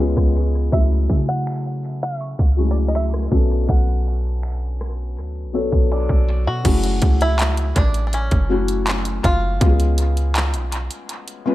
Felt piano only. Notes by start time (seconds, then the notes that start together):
Already playing: G#3
0.00 B3 C#4 F4 G#4
0.72 F#3 A3 C#4 E4 G#4
2.57 F#3 G#3 C#4 E4 G#4
2.64 A3
3.31 F#3 B3 C#4 D4 A4
5.53 F#3 B3 D4 A4 C#5
6.64 F#3 A3 C#4 E4 G#4
8.49 F#3 A3 C#4 E4 F#4
9.60 G#3 B3 C#4 F4 F#4
9.69 G#4
11.46 G#3 B3 C#4 F4 B4